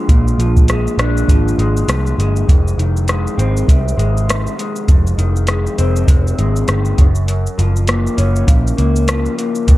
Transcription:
Already playing: clean electric guitar F3 G#3 D4
0.09 picked electric bass A#1, clean electric guitar A#2, kick, closed hi-hat, shaker
0.28 shaker
0.38 picked electric bass A#1, clean electric guitar F3, closed hi-hat, shaker
0.57 kick, shaker
0.68 clean electric guitar G#3, cross-stick, closed hi-hat, shaker
0.87 shaker
0.98 picked electric bass A#1, clean electric guitar D4, cross-stick, closed hi-hat, shaker
1.17 shaker
1.28 picked electric bass G#1, clean electric guitar F3, kick, closed hi-hat, shaker
1.48 shaker
1.58 picked electric bass G#1, clean electric guitar G#3, closed hi-hat, shaker
1.77 shaker
1.88 picked electric bass C2, clean electric guitar F3, cross-stick, closed hi-hat, shaker
2.07 shaker
2.18 picked electric bass G1, clean electric guitar G#3, closed hi-hat, shaker
2.36 shaker
2.48 picked electric bass F1, clean electric guitar F2, kick, closed hi-hat, shaker
2.68 shaker
2.78 picked electric bass F1, clean electric guitar D#3, closed hi-hat, shaker
2.97 shaker
3.08 clean electric guitar G#3, cross-stick, closed hi-hat, shaker
3.27 shaker
3.38 picked electric bass G#1, clean electric guitar C4, closed hi-hat, shaker
3.57 shaker
3.68 picked electric bass C2, clean electric guitar C3, kick, closed hi-hat, shaker
3.88 shaker
3.97 picked electric bass G#1, clean electric guitar G#3, closed hi-hat, shaker
4.17 shaker
4.28 clean electric guitar D#3, cross-stick, closed hi-hat, shaker
4.47 shaker
4.58 clean electric guitar G#3, closed hi-hat, shaker
4.76 shaker
4.88 picked electric bass F1, clean electric guitar F2, kick, closed hi-hat, shaker
5.07 shaker
5.18 picked electric bass F1, clean electric guitar D#3, closed hi-hat, shaker
5.36 shaker
5.47 clean electric guitar G#3, cross-stick, closed hi-hat, shaker
5.67 shaker
5.78 picked electric bass F1, clean electric guitar C4, closed hi-hat, shaker
5.96 shaker
6.08 picked electric bass F1, clean electric guitar C3, kick, closed hi-hat, shaker
6.27 shaker
6.39 picked electric bass G#1, clean electric guitar G#3, closed hi-hat, shaker
6.56 shaker
6.68 picked electric bass G1, clean electric guitar D#3, cross-stick, closed hi-hat, shaker
6.85 shaker
6.98 picked electric bass F#1, clean electric guitar F#2, kick, closed hi-hat, shaker
7.15 shaker
7.28 clean electric guitar F#2, closed hi-hat, shaker
7.46 shaker
7.58 picked electric bass F#1, clean electric guitar F3, closed hi-hat, shaker
7.76 shaker
7.87 clean electric guitar A#3, cross-stick, closed hi-hat, shaker
8.07 shaker
8.17 picked electric bass F#1, clean electric guitar C#4, closed hi-hat, shaker
8.36 shaker
8.47 picked electric bass A#1, clean electric guitar C#3, kick, closed hi-hat, shaker
8.67 shaker
8.77 picked electric bass C#2, clean electric guitar A#3, closed hi-hat, shaker
8.96 shaker
9.08 clean electric guitar F3, cross-stick, closed hi-hat, shaker
9.26 shaker
9.38 clean electric guitar A#3, closed hi-hat, shaker
9.55 shaker
9.67 picked electric bass F1, clean electric guitar F2, kick, closed hi-hat, shaker

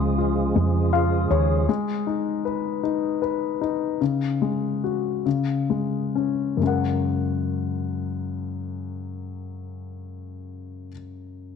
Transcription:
Already playing: fretless electric bass C#2, grand piano C#3 G#3, tonewheel organ C#3 F3 G#3 F4 G#4
0.18 grand piano F4
0.56 fretless electric bass F2, grand piano G#3
0.93 grand piano F4 F5
1.30 fretless electric bass D#2, grand piano G#4 C#5
1.69 grand piano G#3
2.07 grand piano D#4
2.45 grand piano B4
2.83 grand piano D#4
3.22 grand piano B4
3.61 grand piano D#4
4.01 grand piano C#3
4.42 grand piano G#3
4.84 grand piano F#4
5.26 grand piano C#3
5.70 grand piano G#3
6.15 grand piano C#4
6.57 grand piano F#2 C#3
6.61 grand piano G#3 C#4 A#4
6.67 grand piano F#5

